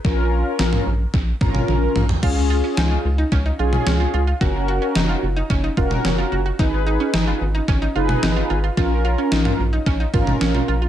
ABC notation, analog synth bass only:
X:1
M:4/4
L:1/8
Q:1/4=110
K:Bbphr
V:1 name="Analog synth bass" clef=bass
B,,,2 B,,, B,,, B,,, A,,, B,,, B,,, | D,,2 D,, D,, D,, C,, D,, D,, | G,,,2 G,,, G,,, G,,, F,,, G,,, G,,, | A,,,2 A,,, A,,, A,,, G,,, A,,, A,,, |
B,,,2 B,,, B,,, B,,, A,,, B,,, B,,, |]